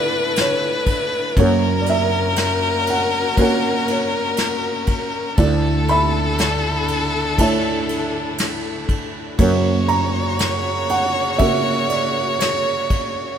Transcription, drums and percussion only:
0.36 snare, ride
0.86 kick, ride
1.36 kick, ride
1.86 ride
2.36 snare, ride
2.87 ride
3.37 kick, ride
3.88 ride
4.37 snare, ride
4.87 kick, ride
5.38 kick, ride
5.88 ride
6.38 snare, ride
6.88 ride
7.38 kick, ride
7.89 ride
8.38 snare, ride
8.89 kick, ride
9.38 kick, ride
9.88 ride
10.39 snare, ride
10.89 ride
11.39 kick, ride
11.90 ride
12.40 snare, ride
12.90 kick, ride

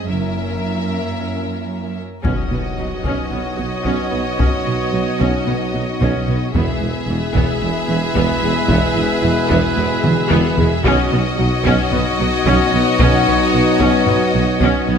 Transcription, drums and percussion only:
2.24 taiko
3.04 taiko
3.85 taiko
4.39 taiko
5.20 taiko
6.01 taiko
6.55 taiko
7.35 taiko
8.15 taiko
8.69 taiko
9.50 taiko
9.77 taiko low-mid
10.04 taiko mid
10.30 taiko mid
10.57 taiko low
10.85 taiko
11.65 taiko
11.91 taiko low-mid
12.46 taiko
12.99 taiko
13.80 taiko
14.06 taiko low-mid
14.60 taiko

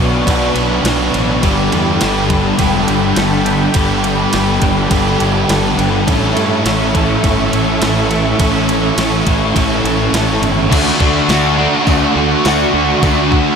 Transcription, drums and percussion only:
0.27 kick, ride
0.56 ride
0.85 snare, ride
1.14 ride
1.43 kick, ride
1.72 ride
2.01 snare, ride
2.30 kick, ride
2.59 kick, ride
2.88 ride
3.16 snare, ride
3.46 ride
3.74 kick, ride
4.04 ride
4.33 snare, ride
4.62 kick, ride
4.91 kick, ride
5.20 ride
5.49 snare, ride
5.79 ride
6.08 kick, ride
6.37 ride
6.66 snare, ride
6.95 kick, ride
7.24 kick, ride
7.53 ride
7.82 snare, ride
8.11 ride
8.39 kick, ride
8.69 ride
8.98 snare, ride
9.27 kick, ride
9.56 kick, ride
9.85 ride
10.14 snare, ride
10.43 ride
10.72 kick, open hi-hat, crash
11.00 kick
11.29 snare, open hi-hat
11.87 kick, open hi-hat
12.45 snare, open hi-hat
13.03 kick, open hi-hat
13.32 kick

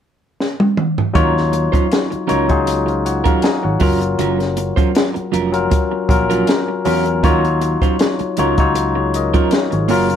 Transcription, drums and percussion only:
0.40 snare
0.60 high tom
0.77 mid tom
0.98 floor tom
1.15 kick, closed hi-hat
1.37 snare
1.53 closed hi-hat
1.74 kick, closed hi-hat
1.92 snare, closed hi-hat
2.12 closed hi-hat
2.29 closed hi-hat
2.49 kick, closed hi-hat
2.67 closed hi-hat
2.88 closed hi-hat
3.06 closed hi-hat
3.25 kick, closed hi-hat
3.42 snare, closed hi-hat
3.80 kick, open hi-hat
4.01 closed hi-hat
4.19 closed hi-hat
4.40 snare, closed hi-hat
4.57 closed hi-hat
4.77 kick, closed hi-hat
4.95 snare, closed hi-hat
5.16 closed hi-hat
5.34 closed hi-hat
5.54 closed hi-hat
5.71 kick, closed hi-hat
6.09 kick, closed hi-hat
6.31 closed hi-hat
6.47 snare, closed hi-hat
6.85 open hi-hat
7.06 closed hi-hat
7.24 kick, closed hi-hat
7.45 closed hi-hat
7.61 closed hi-hat
7.82 kick, closed hi-hat
7.99 snare, closed hi-hat
8.19 closed hi-hat
8.37 closed hi-hat
8.58 kick, closed hi-hat
8.75 closed hi-hat
9.14 closed hi-hat
9.34 kick, closed hi-hat
9.51 snare, closed hi-hat
9.72 closed hi-hat
9.89 open hi-hat
10.10 closed hi-hat

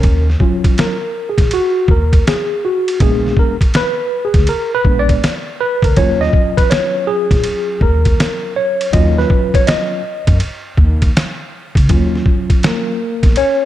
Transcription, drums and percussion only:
0.03 kick, ride
0.30 snare
0.40 kick
0.64 kick, ride
0.78 snare, hi-hat pedal, ride
1.38 kick, snare, ride
1.51 ride
1.88 kick
2.13 kick, ride
2.27 snare, hi-hat pedal, ride
2.88 ride
3.00 kick, ride
3.26 snare
3.37 kick
3.61 kick, ride
3.74 snare, hi-hat pedal, ride
4.34 kick, snare, ride
4.47 ride
4.85 kick
5.09 kick, ride
5.24 snare, hi-hat pedal, ride
5.82 kick, ride
5.96 kick, ride
6.23 snare
6.33 kick
6.58 kick, ride
6.71 snare, hi-hat pedal, ride
7.31 kick, snare, ride
7.44 ride
7.81 kick
8.05 kick, ride
8.20 snare, hi-hat pedal, ride
8.81 ride
8.93 kick, ride
9.19 snare
9.30 kick
9.54 kick, ride
9.67 snare, hi-hat pedal, ride
10.27 kick, ride
10.40 ride
10.77 kick
11.02 kick, ride
11.17 snare, hi-hat pedal, ride
11.75 kick, ride
11.89 kick, ride
12.15 snare
12.26 kick
12.50 kick, ride
12.63 snare, hi-hat pedal, ride
13.23 kick, snare, ride
13.36 ride

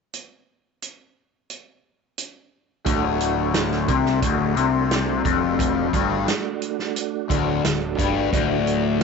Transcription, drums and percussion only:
0.14 closed hi-hat
0.82 closed hi-hat
1.50 closed hi-hat
2.18 closed hi-hat
2.86 kick, closed hi-hat
3.20 closed hi-hat
3.54 snare, closed hi-hat
3.71 snare
3.88 kick, closed hi-hat
4.06 snare
4.22 kick, closed hi-hat
4.57 closed hi-hat
4.91 snare, closed hi-hat
5.25 kick, closed hi-hat
5.59 kick, closed hi-hat
5.93 kick, closed hi-hat
6.28 snare, closed hi-hat
6.62 closed hi-hat
6.79 snare
6.96 closed hi-hat
7.30 kick, closed hi-hat
7.64 snare, closed hi-hat
7.99 kick, closed hi-hat
8.33 kick, closed hi-hat
8.67 closed hi-hat

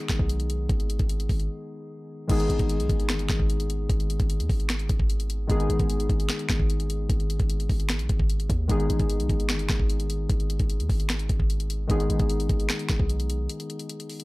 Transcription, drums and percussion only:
0.08 finger snap, kick, snare, closed hi-hat
0.19 kick
0.29 closed hi-hat
0.40 closed hi-hat
0.50 closed hi-hat
0.69 kick, closed hi-hat
0.80 closed hi-hat
0.90 closed hi-hat
0.99 kick, closed hi-hat
1.09 closed hi-hat
1.20 closed hi-hat
1.29 kick, open hi-hat
1.40 closed hi-hat
2.29 kick, closed hi-hat, crash
2.40 closed hi-hat
2.50 closed hi-hat
2.59 kick, closed hi-hat
2.69 closed hi-hat
2.80 closed hi-hat
2.89 kick, closed hi-hat
3.00 closed hi-hat
3.09 finger snap, snare, closed hi-hat
3.19 closed hi-hat
3.29 finger snap, kick, snare, closed hi-hat
3.40 kick
3.50 closed hi-hat
3.60 closed hi-hat
3.70 closed hi-hat
3.90 kick, closed hi-hat
4.00 closed hi-hat
4.10 closed hi-hat
4.20 kick, closed hi-hat
4.30 closed hi-hat
4.40 closed hi-hat
4.50 kick, open hi-hat
4.60 closed hi-hat
4.69 finger snap, snare, closed hi-hat
4.79 closed hi-hat
4.89 kick, closed hi-hat
5.00 kick
5.10 closed hi-hat
5.20 closed hi-hat
5.30 closed hi-hat
5.50 kick, closed hi-hat
5.60 closed hi-hat
5.70 closed hi-hat
5.79 kick, closed hi-hat
5.90 closed hi-hat
6.00 closed hi-hat
6.09 kick, closed hi-hat
6.20 closed hi-hat
6.29 finger snap, snare, closed hi-hat
6.39 closed hi-hat
6.49 finger snap, kick, snare, closed hi-hat
6.60 kick
6.70 closed hi-hat
6.80 closed hi-hat
6.90 closed hi-hat
7.10 kick, closed hi-hat
7.20 closed hi-hat
7.30 closed hi-hat
7.40 kick, closed hi-hat
7.50 closed hi-hat
7.60 closed hi-hat
7.70 kick, open hi-hat
7.80 closed hi-hat
7.89 finger snap, snare, closed hi-hat
7.99 closed hi-hat
8.09 kick, closed hi-hat
8.20 kick
8.30 closed hi-hat
8.40 closed hi-hat
8.50 kick, closed hi-hat
8.69 kick, closed hi-hat
8.80 closed hi-hat
8.90 closed hi-hat
8.99 kick, closed hi-hat
9.10 closed hi-hat
9.20 closed hi-hat
9.29 kick, closed hi-hat
9.40 closed hi-hat
9.49 finger snap, snare, closed hi-hat
9.59 closed hi-hat
9.69 finger snap, kick, snare, closed hi-hat
9.80 kick
9.90 closed hi-hat
10.00 closed hi-hat
10.10 closed hi-hat
10.30 kick, closed hi-hat
10.40 closed hi-hat
10.50 closed hi-hat
10.59 kick, closed hi-hat
10.70 closed hi-hat
10.80 closed hi-hat
10.90 kick, open hi-hat
11.00 closed hi-hat
11.09 finger snap, snare, closed hi-hat
11.19 closed hi-hat
11.29 kick, closed hi-hat
11.40 kick
11.50 closed hi-hat
11.60 closed hi-hat
11.70 closed hi-hat
11.90 kick, closed hi-hat
12.00 closed hi-hat
12.10 closed hi-hat
12.19 kick, closed hi-hat
12.30 closed hi-hat
12.40 closed hi-hat
12.49 kick, closed hi-hat
12.60 closed hi-hat
12.69 finger snap, snare, closed hi-hat
12.79 closed hi-hat
12.89 finger snap, kick, snare, closed hi-hat
13.00 kick
13.10 closed hi-hat
13.20 closed hi-hat
13.30 closed hi-hat
13.49 closed hi-hat
13.60 closed hi-hat
13.70 closed hi-hat
13.79 closed hi-hat
13.89 closed hi-hat
14.00 closed hi-hat
14.10 open hi-hat
14.20 closed hi-hat

